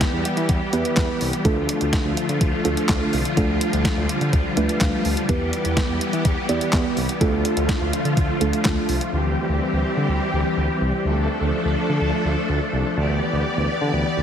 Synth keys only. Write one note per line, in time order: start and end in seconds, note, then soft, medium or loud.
0.00 0.20 B3 medium
0.00 0.20 E4 medium
0.00 0.20 G4 medium
0.00 0.20 B4 loud
0.73 1.23 B3 medium
0.73 1.23 E4 medium
0.73 1.23 G4 medium
0.73 1.23 B4 medium
0.73 0.95 E5 medium
0.97 1.42 B5 medium
1.45 2.12 A3 medium
1.45 2.12 D4 medium
1.45 2.12 F4 medium
1.45 2.12 A4 loud
2.65 3.15 A3 medium
2.65 3.15 D4 medium
2.65 3.15 F4 medium
2.65 3.15 A4 medium
3.37 4.04 A3 medium
3.37 4.04 D4 medium
3.37 4.04 F4 medium
3.37 4.04 A4 loud
4.57 5.08 A3 medium
4.57 5.07 D4 medium
4.57 5.07 F4 medium
4.57 5.07 B4 loud
4.57 4.79 E5 medium
4.81 5.04 F5 medium
5.05 5.27 A5 medium
5.29 5.96 B3 medium
5.29 5.96 E4 medium
5.29 5.96 G4 medium
5.29 5.96 B4 loud
6.49 6.99 B3 medium
6.49 6.99 E4 medium
6.49 6.99 G4 medium
6.49 6.99 D5 loud
7.21 7.88 A3 medium
7.21 7.88 D4 medium
7.21 7.88 F4 medium
7.21 7.88 A4 loud
8.41 8.91 A3 medium
8.41 8.91 D4 medium
8.41 8.91 F4 medium
8.41 8.91 A4 medium